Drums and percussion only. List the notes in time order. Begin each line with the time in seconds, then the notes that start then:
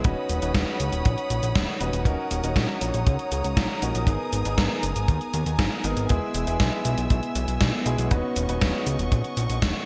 0.04 kick, closed hi-hat, cabasa
0.29 closed hi-hat, cabasa
0.42 closed hi-hat, cabasa
0.54 kick, snare, closed hi-hat, cabasa
0.80 closed hi-hat, cabasa
0.93 closed hi-hat, cabasa
1.05 kick, closed hi-hat, cabasa
1.18 closed hi-hat
1.30 closed hi-hat, cabasa
1.43 closed hi-hat, cabasa
1.55 kick, snare, closed hi-hat, cabasa
1.81 closed hi-hat, cabasa
1.93 closed hi-hat, cabasa
2.05 kick, closed hi-hat, cabasa
2.31 closed hi-hat, cabasa
2.44 closed hi-hat, cabasa
2.56 kick, snare, closed hi-hat, cabasa
2.69 snare
2.81 closed hi-hat, cabasa
2.94 closed hi-hat, cabasa
3.07 kick, closed hi-hat, cabasa
3.19 closed hi-hat
3.32 closed hi-hat, cabasa
3.44 closed hi-hat, cabasa
3.57 kick, snare, closed hi-hat, cabasa
3.82 closed hi-hat, cabasa
3.95 closed hi-hat, cabasa
4.07 kick, closed hi-hat, cabasa
4.33 closed hi-hat, cabasa
4.45 closed hi-hat, cabasa
4.58 kick, snare, closed hi-hat, cabasa
4.83 closed hi-hat, cabasa
4.96 closed hi-hat, cabasa
5.08 kick, closed hi-hat, cabasa
5.21 closed hi-hat
5.34 closed hi-hat, cabasa
5.46 closed hi-hat, cabasa
5.59 kick, snare, closed hi-hat, cabasa
5.84 closed hi-hat, cabasa
5.97 closed hi-hat, cabasa
6.09 kick, closed hi-hat, cabasa
6.34 closed hi-hat, cabasa
6.47 closed hi-hat, cabasa
6.60 kick, snare, closed hi-hat, cabasa
6.72 snare
6.85 closed hi-hat, cabasa
6.98 closed hi-hat, cabasa
7.10 kick, closed hi-hat, cabasa
7.23 closed hi-hat
7.35 closed hi-hat, cabasa
7.48 closed hi-hat, cabasa
7.61 kick, snare, closed hi-hat, cabasa
7.86 closed hi-hat, cabasa
7.98 closed hi-hat, cabasa
8.11 kick, closed hi-hat, cabasa
8.36 closed hi-hat, cabasa
8.49 closed hi-hat, cabasa
8.61 kick, snare, closed hi-hat, cabasa
8.87 closed hi-hat, cabasa
8.99 closed hi-hat, cabasa
9.12 kick, closed hi-hat, cabasa
9.24 closed hi-hat
9.37 closed hi-hat, cabasa
9.50 closed hi-hat, cabasa
9.62 kick, snare, closed hi-hat, cabasa